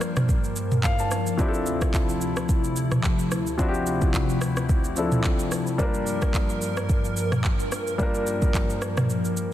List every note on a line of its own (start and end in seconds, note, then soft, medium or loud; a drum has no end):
0.00 1.35 G2 medium
0.00 1.37 F3 medium
0.00 1.34 G3 medium
0.00 1.35 A#3 medium
0.00 1.35 D4 medium
0.00 1.36 F4 medium
0.00 1.35 A#4 medium
0.00 1.36 C5 medium
0.00 cross-stick loud
0.00 shaker medium
0.17 cross-stick loud
0.17 mid tom loud
0.17 shaker medium
0.29 kick loud
0.29 shaker medium
0.44 shaker soft
0.56 shaker medium
0.72 mid tom medium
0.72 shaker soft
0.84 0.98 F5 medium
0.84 kick medium
0.84 clap medium
0.84 shaker medium
0.99 1.37 A5 medium
0.99 shaker medium
1.11 cross-stick medium
1.11 shaker medium
1.27 shaker medium
1.38 5.75 D2 medium
1.38 5.75 C3 medium
1.38 3.54 F3 medium
1.38 7.96 F3 medium
1.38 3.55 C4 medium
1.38 3.56 D4 medium
1.38 3.57 E4 medium
1.38 3.56 E4 medium
1.38 kick loud
1.38 shaker medium
1.42 1.48 G4 medium
1.48 3.60 A4 medium
1.54 shaker medium
1.66 shaker loud
1.81 kick medium
1.81 cross-stick loud
1.81 shaker medium
1.94 kick medium
1.94 clap medium
1.94 shaker medium
2.09 shaker medium
2.21 shaker medium
2.37 cross-stick loud
2.37 shaker soft
2.49 kick loud
2.49 shaker medium
2.64 shaker soft
2.76 shaker medium
2.92 cross-stick medium
2.92 mid tom medium
2.92 shaker soft
3.04 kick medium
3.04 clap medium
3.04 shaker medium
3.19 shaker medium
3.32 cross-stick medium
3.32 shaker medium
3.47 shaker soft
3.58 4.93 F3 medium
3.58 4.94 C4 medium
3.58 4.94 D4 medium
3.58 5.77 E4 medium
3.58 4.95 E4 medium
3.58 kick loud
3.58 shaker medium
3.62 3.68 F#4 medium
3.69 4.99 G4 medium
3.74 shaker medium
3.87 shaker medium
4.02 kick loud
4.02 shaker medium
4.14 kick medium
4.14 clap medium
4.14 shaker medium
4.29 shaker medium
4.41 cross-stick loud
4.41 shaker medium
4.57 cross-stick medium
4.57 shaker medium
4.69 kick loud
4.69 shaker medium
4.84 shaker medium
4.96 5.79 F3 medium
4.96 5.79 C4 medium
4.96 5.79 D4 soft
4.96 5.80 E4 soft
4.96 5.80 A4 medium
4.96 shaker medium
5.12 mid tom medium
5.12 shaker medium
5.24 kick loud
5.24 clap medium
5.24 shaker medium
5.39 shaker medium
5.52 cross-stick medium
5.52 shaker medium
5.67 shaker soft
5.78 9.53 G2 medium
5.78 7.95 G3 medium
5.78 7.95 A#3 medium
5.78 7.96 D4 medium
5.78 7.97 F4 medium
5.78 9.53 A#4 medium
5.78 kick loud
5.78 shaker medium
5.83 7.97 A#4 medium
5.94 shaker medium
6.07 shaker medium
6.22 kick loud
6.22 cross-stick medium
6.22 shaker medium
6.34 kick loud
6.34 clap medium
6.34 shaker medium
6.50 shaker medium
6.62 shaker medium
6.77 cross-stick loud
6.77 shaker soft
6.89 kick loud
6.89 shaker medium
7.05 shaker medium
7.17 shaker medium
7.32 cross-stick loud
7.32 mid tom medium
7.32 shaker soft
7.44 kick loud
7.44 clap medium
7.44 shaker medium
7.60 shaker medium
7.72 cross-stick medium
7.72 shaker medium
7.87 shaker medium
7.98 9.53 F3 medium
7.98 9.53 G3 medium
7.98 9.53 A#3 medium
7.98 9.53 D4 medium
7.98 9.53 F4 medium
7.98 kick loud
7.98 shaker medium
8.03 9.53 A#4 medium
8.15 shaker medium
8.27 shaker medium
8.42 kick loud
8.42 shaker medium
8.54 kick medium
8.54 clap medium
8.54 shaker medium
8.70 shaker medium
8.82 cross-stick loud
8.82 shaker medium
8.97 cross-stick loud
8.97 mid tom loud
8.97 shaker medium
9.10 shaker medium
9.25 shaker medium
9.37 shaker medium